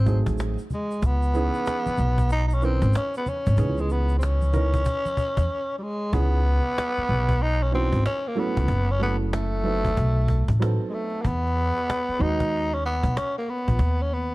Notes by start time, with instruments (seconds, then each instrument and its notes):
Already playing: upright bass G#1, tenor saxophone C4
0.06 upright piano F#3 A3 C4 D#4 G#4, cajon bass, shaker
0.26 upright bass A1, cajon bass, cajon slap, high conga, shaker
0.38 cajon slap, shaker
0.58 shaker
0.70 tenor saxophone G#3, cajon slap, high conga, low conga, shaker
0.91 cajon slap, shaker
1.02 upright bass C#2, tenor saxophone B3, cajon bass, shaker
1.22 shaker
1.34 upright piano E3 B3 C#4 D#4 G#4, shaker
1.54 shaker
1.66 cajon slap, shaker
1.86 muted upright bass stroke, high conga, shaker
1.98 upright bass B1, low conga, shaker
2.18 cajon bass, cajon slap, shaker
2.30 tenor saxophone D#4, shaker
2.48 tenor saxophone D#4, shaker
2.54 tenor saxophone C#4
2.61 upright piano E3 B3 C#4 D#4 A#4, tenor saxophone C4, shaker
2.82 upright bass G#1, cajon bass, cajon slap, high conga, shaker
2.93 tenor saxophone C#4, cajon slap, shaker
3.14 tenor saxophone B3, shaker
3.26 tenor saxophone C#4, high conga, low conga, shaker
3.46 upright bass G#1, cajon bass, shaker
3.57 upright bass C#2, upright piano D#3 B3 C#4 D#4 G#4, cajon bass, shaker
3.63 upright piano E3
3.78 tenor saxophone G#3, high conga, shaker
3.90 tenor saxophone B3, shaker
4.09 shaker
4.19 tenor saxophone C4, shaker
4.23 tenor saxophone C#4, cajon slap
4.42 high conga, shaker
4.52 upright piano E3 B3 C#4 D#4 A#4, cajon bass, low conga, shaker
4.74 cajon bass, cajon slap, shaker
4.85 cajon bass, shaker
5.06 high conga, shaker
5.17 cajon bass, shaker
5.37 upright bass E2, cajon bass, cajon slap, high conga, shaker
5.78 tenor saxophone G3
5.83 tenor saxophone G#3
6.12 upright bass C#2, upright piano E3 B3 C#4 D#4 G#4, tenor saxophone B3, cajon bass
6.67 cajon slap
6.78 cajon slap
6.98 muted upright bass stroke
7.09 upright bass B1
7.29 cajon bass, cajon slap
7.43 tenor saxophone D#4
7.63 tenor saxophone C#4
7.71 upright piano E3 B3 C#4 D#4 F#4, tenor saxophone C4
7.92 upright bass G#1, cajon bass, cajon slap
8.06 tenor saxophone C#4, cajon slap
8.28 tenor saxophone A#3
8.35 upright piano F#3 A3 C#4 E4 A4, cajon slap
8.39 tenor saxophone B3
8.57 upright bass C#2, cajon bass
8.68 upright bass F#1, cajon bass
8.91 tenor saxophone C#4
8.99 upright piano F#3 A3 C#4 E4 A4, tenor saxophone B3
9.22 cajon slap
9.33 tenor saxophone A3, cajon slap
9.63 upright piano F#3 B3 C4 D#4 A4
9.85 cajon bass, cajon slap
9.97 upright bass B1, cajon bass
10.28 cajon bass
10.48 upright bass A1, cajon bass, cajon slap
10.60 upright piano F#3 B3 C4 D#4 A4, cajon slap
10.89 tenor saxophone G#3
10.94 tenor saxophone A3, cajon slap
11.14 cajon slap
11.22 upright bass E2, tenor saxophone A#3, cajon bass
11.26 tenor saxophone B3
11.79 cajon slap
11.90 cajon slap
12.08 muted upright bass stroke
12.19 upright bass D#2, upright piano D#3 G#3 B3 D#4 F#4, tenor saxophone D#4
12.40 cajon bass, cajon slap
12.74 tenor saxophone C#4
12.86 tenor saxophone B3
13.03 upright bass B1, cajon bass, cajon slap
13.17 tenor saxophone C#4, cajon slap
13.38 tenor saxophone A#3
13.48 tenor saxophone B3, cajon slap
13.68 upright bass A#1, cajon bass
13.79 upright bass D#2, cajon bass
14.02 tenor saxophone C#4
14.13 tenor saxophone B3